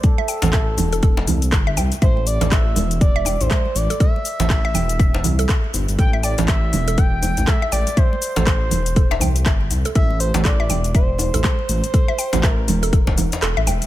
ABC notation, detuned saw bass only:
X:1
M:4/4
L:1/16
Q:"Swing 16ths" 1/4=121
K:Am
V:1 name="Detuned saw bass" clef=bass
z3 A,,,3 E,,,4 C,,2 G,,,2 C,, z | A,,,3 A,,,3 E,,,4- E,,, A,,, z2 A,,, z | z3 A,,,3 E,,,4 C,,2 z2 G,,, G,,, | A,,,3 A,,,3 E,,,4- E,,, A,,, z2 A,,, z |
z3 A,,,3 E,,,4 C,,2 G,,,2 C,, z | A,,,3 A,,,3 E,,,4- E,,, A,,, z2 A,,, z | z3 A,,,3 E,,,4- E,,, z E,,, A,,, E,,, z |]